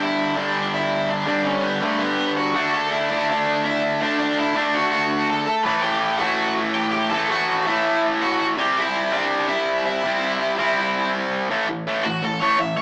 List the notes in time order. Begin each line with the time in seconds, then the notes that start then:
Already playing: G2 D3 G3
0.02 E4 E5
0.35 G2 D3 G3 D4 D5
0.74 E4 E5
1.09 D4 D5
1.26 G2 D3 G3 D4 D5
1.45 C#4 C#5
1.62 B3 B4
1.81 G2 D3 G3 A3 A4
1.99 B3 B4
2.36 F#4 F#5
2.55 D3 A3 D4 F#4 F#5
2.73 A4 A5
2.92 E4 E5
3.10 D3 A3 D4
3.30 D4 D5
3.65 E4 E5
4.01 D3 A3 D4 D5
4.20 D4 D5
4.38 E4 E5
4.55 D3 A3 D4 D5
4.74 F#4 F#5
4.92 F#4 F#5
5.30 A4 A5
5.46 A4 A5
5.64 A2 E3 A3 B4 B5
5.81 G4 G5
6.18 E3 A3 F#4 F#5
6.22 A2
6.75 G4 G5
6.92 G4 G5
7.10 A2 E3 A3 A4 A5
7.31 F#4 F#5
7.66 A2 E3 A3 E4 E5
8.23 F#4 F#5
8.40 F#4 F#5
8.57 C3 G3 C4 G4 G5
8.78 E4 E5
9.12 C3 G3 C4 D4 D5
9.49 E4 E5
9.86 E4 E5
10.04 C3 G3 C4
10.58 C3 G3 C4
11.50 A2 E3 A3
11.69 A2 E3
11.87 A2 E3 A3
12.04 A2 E3 F#4
12.22 A2 E3 A4
12.40 A2 E3 A3 C#5
12.58 A2 E3 E5
12.76 A2 E3 C#5